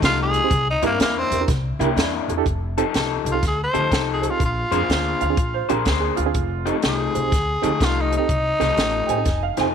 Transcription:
0.02 upright bass C2, clean electric guitar F3 A3 D#4 G4, tenor saxophone F4, kick, snare, closed hi-hat
0.22 tenor saxophone G#4
0.34 reed electric piano G4 A4, closed hi-hat
0.44 reed electric piano C4 D#4 G4 C5
0.51 upright bass C2, kick, closed hi-hat
0.70 tenor saxophone D#4
0.82 upright bass G2, clean electric guitar C3 A#3 D4 E4, tenor saxophone A#3, reed electric piano D4 E4 G4 A#4, closed hi-hat
1.00 upright bass E2, clean electric guitar C3 A#3 D4 E4, tenor saxophone A#3, snare, closed hi-hat
1.19 tenor saxophone C4
1.31 upright bass E2, reed electric piano G4 A#4, closed hi-hat
1.41 reed electric piano D4 E4 G4 A#4
1.48 upright bass C2, kick, snare, closed hi-hat
1.79 upright bass C2, clean electric guitar C3 A#3 D4 E4, reed electric piano D4 E4 G4 A#4 G5, closed hi-hat
1.96 upright bass E2, clean electric guitar C3 A#3 D4 E4, reed electric piano D5, snare, closed hi-hat
2.28 upright bass E2, reed electric piano G4 A4, closed hi-hat
2.37 reed electric piano D4 E4 G4 A4
2.46 upright bass F1, kick, closed hi-hat
2.78 clean electric guitar F3 D#4 G4 A4, reed electric piano C4 D#4 G4 A4, closed hi-hat
2.94 upright bass C2, clean electric guitar F3 D#4 G4 A4, snare, closed hi-hat
3.25 upright bass C2, reed electric piano G4 A4, closed hi-hat
3.32 reed electric piano C4 D#4 G4 A4, tenor saxophone F4
3.43 upright bass D2, kick, snare, closed hi-hat
3.47 tenor saxophone G#4
3.64 tenor saxophone C5
3.73 upright bass D2, clean electric guitar F3 D#4 G4 A4, reed electric piano C4 D#4 G4 C5, closed hi-hat
3.91 upright bass C2, clean electric guitar F3 D#4 G4 A4, kick, snare, closed hi-hat
4.13 tenor saxophone G#4
4.22 reed electric piano G4 C5, closed hi-hat
4.30 reed electric piano C4 D#4 G4 A4, tenor saxophone F4
4.40 upright bass A#1, kick, closed hi-hat
4.45 tenor saxophone F4
4.71 upright bass F2, clean electric guitar A#3 D4 G#4 C5, reed electric piano C4 D4 F4 G#4, closed hi-hat
4.89 upright bass D2, clean electric guitar A#3 D4 G#4 C5, snare, closed hi-hat
5.21 upright bass D2, reed electric piano F4 G#4, upright piano F5, closed hi-hat
5.30 reed electric piano C4 D4 F4 G#4
5.37 upright bass A#1, kick, closed hi-hat
5.54 upright piano C5
5.69 upright bass A#1, clean electric guitar A#3 D4 G#4 C5, reed electric piano C4 D4 F4 G4, upright piano A#4, closed hi-hat
5.85 upright bass D2, clean electric guitar A#3 D4 G#4 C5, kick, snare, closed hi-hat
6.00 upright piano G#4
6.17 upright bass D2, upright piano F4, reed electric piano F4 G#4, closed hi-hat
6.26 reed electric piano C4 D4 F4 G#4
6.34 upright bass F1, kick, closed hi-hat
6.66 clean electric guitar F3 A3 D#4 G4, reed electric piano C4 D#4 G4 A4, closed hi-hat
6.82 upright bass C2, clean electric guitar F3 A3 D#4 G4, snare, closed hi-hat
6.89 tenor saxophone G#4
7.15 upright bass C2, reed electric piano G4 C5, closed hi-hat
7.22 reed electric piano C4 D#4 G4 C5
7.32 upright bass D2, kick, snare, closed hi-hat
7.62 upright bass D2, clean electric guitar F3 A3 D#4 G4, reed electric piano C4 D#4 G4 A4, closed hi-hat
7.80 upright bass C2, clean electric guitar F3 A3 D#4 G4, kick, snare, closed hi-hat
7.84 tenor saxophone F4
8.01 tenor saxophone D#4
8.11 reed electric piano G4 C5, closed hi-hat
8.17 reed electric piano C4 D#4 G4 A4, tenor saxophone D#4
8.29 upright bass C2, kick, closed hi-hat
8.60 upright bass C2, clean electric guitar F3 A3 D#4 G4, reed electric piano C4 D#4 G4 A4, snare, closed hi-hat
8.77 upright bass A1, clean electric guitar F3 A3 D#4 G4, snare, closed hi-hat
9.07 upright bass A1, reed electric piano G4 C5, upright piano G5 G#5, closed hi-hat
9.17 reed electric piano C4 D#4 G4 A4
9.25 upright bass F1, kick, snare, closed hi-hat
9.43 upright piano F5
9.57 upright bass F1, clean electric guitar F3 A3 D#4 G4, reed electric piano C4 D#4 G4 C5, upright piano G#5, snare, closed hi-hat

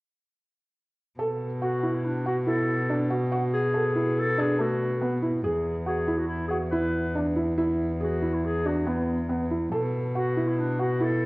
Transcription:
1.19 cello B2, felt piano A4
1.62 felt piano F#4, clarinet F#4
1.83 felt piano E4
1.94 clarinet E4
2.05 clarinet D4
2.26 felt piano F#4, clarinet F#4
2.47 felt piano E4, clarinet A4
2.90 felt piano D4
3.11 felt piano F#4
3.32 felt piano F#4
3.54 clarinet G#4
3.74 felt piano A4
3.96 felt piano E4
4.19 clarinet A4
4.38 felt piano D4, clarinet G#4
4.59 felt piano A3, clarinet F#4
5.02 felt piano B3
5.23 felt piano E4
5.44 cello E2, felt piano G#4
5.86 felt piano F#4, clarinet G#4
6.08 felt piano E4
6.17 clarinet F#4
6.27 clarinet E4
6.48 felt piano F#4, clarinet G#4
6.70 felt piano E4, clarinet B4
7.15 felt piano D4
7.36 felt piano E4
7.58 felt piano E4
8.00 clarinet F#4, felt piano G#4
8.22 felt piano E4
8.34 clarinet E4
8.44 clarinet G#4
8.65 felt piano D4, clarinet F#4
8.86 felt piano B3, clarinet E4
9.29 felt piano B3
9.51 felt piano E4
9.72 cello B2, felt piano A4
10.15 felt piano F#4, clarinet F#4
10.37 felt piano E4
10.48 clarinet E4
10.59 clarinet D4
10.79 felt piano F#4, clarinet F#4
11.01 felt piano E4, clarinet A4

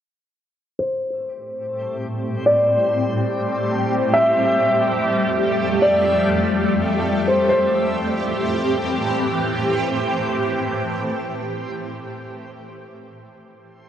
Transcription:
0.78 ambient pad A2 G3 C4 G4, synth texture A3 G4 C5, felt piano C5
2.46 felt piano D5
4.14 ambient pad F2 A3, synth texture F4 E5, felt piano E5
5.82 felt piano D5
7.28 felt piano C5
7.49 ambient pad A2 E3 C4 G4, synth texture A3 G4 C5, felt piano C5

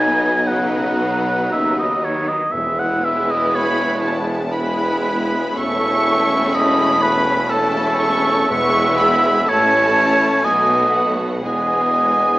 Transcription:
Already playing: double bass section B1, tuba B1, cello section B2, viola section F#3 B3, french horn section F#3 D#4, violin section D#4 B4 D#5, oboe G#5
0.46 cello section C#3, viola section F#3 B3, violin section D#4 B4, oboe F#5
0.99 cello section B2
1.51 tuba D#2, double bass section D#2, cello section C#3, oboe E5
1.79 oboe D#5
2.04 cello section D#3, oboe C#5
2.28 oboe D#5
2.52 tuba E1, double bass section E1, timpani E2, cello section E2, french horn section G#3 E4, viola section G#3 B3, violin section E4 B4, oboe E5
2.79 oboe F#5
3.04 oboe E5
3.31 oboe D#5
3.53 oboe C#5, violin section B5
4.02 violin section A5
4.50 viola section G#3 B3, violin section E4 B4 B5, oboe B4
5.55 tuba E1, double bass section E1, cello section E2, timpani E2, french horn section A3 C#4, viola section A3 C#4, violin section E4 A4 C#6, oboe E5
6.54 oboe D#5, violin section B5
7.02 oboe B4
7.48 viola section A3 C#4, violin section E4 A4 A5, oboe A4
7.99 violin section C#6
8.48 tuba E1, double bass section E1, cello section E2, timpani E2, french horn section G#3 B3, viola section G#3 B3, violin section E4 B4 C#6, oboe E5
8.99 violin section B5
9.47 tuba A1, double bass section A1, cello section A2, french horn section A3 C#4, viola section A3 C#4, violin section E4 A4 A5, oboe C#5
10.43 double bass section B1, tuba B1, cello section B2, viola section A3 B3, french horn section B3, violin section B3 F#4 G#5, oboe D#5
10.92 violin section F#5
11.43 double bass section E1, tuba E1, cello section E2, viola section G#3 B3, french horn section G#3, violin section B3 G#4 G#5, oboe D#5

